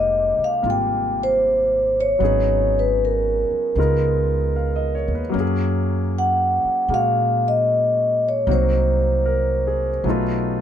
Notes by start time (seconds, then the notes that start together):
Already playing: F1 C3 G#3 A#3 D#4 G4 D#5
0.38 muted upright bass stroke
0.44 F5
0.62 G#1 G3 A#3 F4
0.70 G5
1.23 C5
2.00 C#5
2.19 G#1 F#3 B3 C#4 D#4
2.24 G#4
2.79 B4
3.05 A#4
3.51 muted upright bass stroke
3.75 C#2 G#3 B3 D#4 F4
3.80 A#4
4.56 F5
4.76 D#5
4.95 C#5
5.08 D#2
5.15 B4
5.30 F#3 A#3
5.34 F#2 C#4
5.40 G#4
6.18 F#5
6.65 muted upright bass stroke
6.88 A#2 G#3 A#3 F#4
6.94 F5
7.48 D#5
8.29 C#5
8.47 C2 F#3 A#3 C4 D#4 F#4
8.51 C5
9.26 A#4
9.67 G#4
10.04 B1 F#3 A3 B3
10.08 D#4 F4